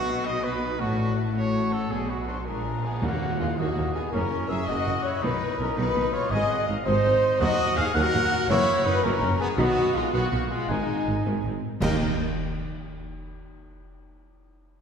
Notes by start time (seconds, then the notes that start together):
Already playing: B1 B2 B3 F#4
0.06 B3 F#4 D#5
0.25 D#4 F#4 B4 D#5 F#5
0.43 B3 D#4 F#4 B4 D#5
0.60 D#4 B4 F#5
0.79 A1 A2 A3 F#4 C#5 A5
0.98 C#4 A4 D5 F#5
1.16 A3 F#4 E5 A5
1.33 C#4 F#4 A4 C#5 F#5
1.53 A3 F#4 A5
1.71 C#4 A4 F#5
1.89 B1 B2 B3 F#4 G#4 D5
2.08 A3 D4 F#4 B4 F#5
2.27 A3 B3 D4 F#4 C5 D5 C6
2.45 A#1 A#2 G#3 D4 G#4 A#4 G#5 A#5
2.65 A#3 F4 A#5
2.83 G#3 B3 D4 G#4 G#5
3.00 D#2 D#3 F#3 A#3 F#4 F#5, tam-tam
3.38 D#2 G#3 A#3 D#4 F4 F5
3.56 D#2 D#3 F#3 A#3 F#4 D#5 F#5
3.76 D#2 F#3 A#3
3.93 B3 G#4 G#5
4.11 F#1 F#2 C#3 A#3 C#4 A#4 C#5 A#5
4.48 F#1 F#2 F#3 E4 G#4 E5 E6
4.66 F#1 F#2 C#3 A#3 F#4 D#5 F#5 D#6
4.86 F#1 F#2 E3 C#4
5.03 E4 C#5 C#6
5.20 B1 B2 D#3 F#3 D#4 B4 D#5 B5
5.57 B1 B2 F#3 C#4 D#4 A#4 A#5
5.76 B1 B2 D#3 F#3 D#4 B4 B5
5.95 B1 B2 D#3 B3
6.12 F4 C#5 C#6
6.30 G#1 G#2 C3 G#3 G#4 D#5 G#5 D#6
6.49 F#5
6.67 G#1 G#2 G#3 D#4 F5
6.85 G#1 G#2 C3 G#3 D#4 C5 D#5 C6
7.04 G#1 G#2 D#3 C4
7.40 D#2 D#3 F#3 F#4 D#5 F#5 D#6
7.76 D#2 A#3 D#4 G#4 F5 F6
7.94 D#2 D#3 F#3 F#4 A#4 F#5 F#6
8.12 D#2 F#3 A#3 A#4
8.32 F#5
8.49 F#1 F#2 E3 A#3 E4 C#5 C#6
8.84 F#1 F#2 A#3 D#4 E4 B4 B5
9.03 F#1 F#2 E3 A#3 C#4 A#4 C#5 A#5
9.21 F#1 F#2 F#3 C#4
9.39 B3 G#4 G#5
9.56 B1 B2 D#3 F#3 B3 F#4 D#5 F#5
9.93 B1 B2 G#3 B3 D#4 F4 F5
10.13 B1 B2 D#3 F#3 B3 F#4 F#5
10.31 B1 B2 F#3 A#3 B3 F#4 F#5
10.50 G#3 F4 F5
10.68 G#1 G#2 D#3 G#3 D#4 D#5 G#5
11.06 G#1 G#2 C4 D#4
11.26 G#1 G#2 D#3 G#3
11.44 G#1 G#2 G#3 C4
11.80 D#2 D#3 A#3 D#4 G4 D#5 G5, concert bass drum, crash